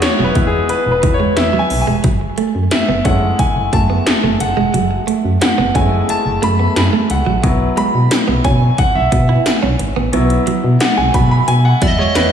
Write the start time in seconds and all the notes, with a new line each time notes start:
Already playing: G#3 B3 E4 F#4 G#4 B4 C#5 E5 F#5
0.02 C#5, muted clean electric guitar stroke, snare, closed hi-hat
0.19 E1 F#3
0.24 B4
0.35 E2 E3 G#3 B3 E4, kick, closed hi-hat
0.47 G#4
0.69 B4, muted clean electric guitar stroke, closed hi-hat
0.86 E1
0.92 B4
1.03 E2 E3, kick, closed hi-hat
1.14 C#5
1.20 G#3
1.37 E2 E5, snare, closed hi-hat
1.53 F#3
1.59 G#5
1.70 B1, muted clean electric guitar stroke, open hi-hat
1.81 G#5
1.87 E1 G#3
2.04 F#1 F#3, kick, closed hi-hat
2.21 muted clean electric guitar stroke
2.38 A3, closed hi-hat
2.55 F#2
2.71 E5, muted clean electric guitar stroke, snare, closed hi-hat
2.88 F#1 B3
3.04 F#2 G#3 A3 C#4 E4 F#5, kick, closed hi-hat
3.39 G#5, muted clean electric guitar stroke, kick, closed hi-hat
3.56 F#1
3.73 F#2 A3 A5, kick, closed hi-hat
3.90 B3
4.06 snare, closed hi-hat
4.23 F#1 A3
4.40 F#1 F#5, muted clean electric guitar stroke, closed hi-hat
4.57 E1 G#3
4.74 F#1 F#3, closed hi-hat
4.91 muted clean electric guitar stroke
5.07 A3, closed hi-hat
5.24 F#2
5.41 F#5, muted clean electric guitar stroke, snare, closed hi-hat
5.58 F#1 B3
5.75 F#2 G#3 A3 C#4 E4 G#5, kick, closed hi-hat
6.09 A5, muted clean electric guitar stroke, closed hi-hat
6.25 F#1
6.42 F#2 A3 B5, closed hi-hat
6.59 B3
6.76 F#2, snare, closed hi-hat
6.93 A3
7.10 C#2 F#5, muted clean electric guitar stroke, closed hi-hat
7.26 A1 F#3
7.43 B1 F#3 B3 E4, kick, closed hi-hat
7.60 muted clean electric guitar stroke
7.77 G#3 B5, closed hi-hat
7.94 B2
8.11 muted clean electric guitar stroke, snare, closed hi-hat, tambourine
8.28 B1 B3
8.44 B2 C#4 G#5, kick, closed hi-hat
8.78 F#5, muted clean electric guitar stroke, kick, closed hi-hat
8.95 B1 E5
9.12 B2 B3, kick, closed hi-hat
9.29 E4
9.46 snare, closed hi-hat, tambourine
9.63 B1 C#4
9.79 G#1, muted clean electric guitar stroke, closed hi-hat
9.96 A1 B3
10.12 B1 F#3 B3 E4, closed hi-hat
10.30 muted clean electric guitar stroke, closed hi-hat
10.47 F#3, closed hi-hat
10.64 B2
10.80 F#5, muted clean electric guitar stroke, snare, closed hi-hat, tambourine
10.97 B1 G#3 G#5
11.14 B2 F#3 B5, kick, closed hi-hat
11.31 B5
11.48 B2 G#5, muted clean electric guitar stroke, closed hi-hat
11.65 F#5
11.82 E2 F#3 D#5 E5, kick, closed hi-hat
11.99 G#3 C#5
12.15 E2 B4, snare, closed hi-hat, tambourine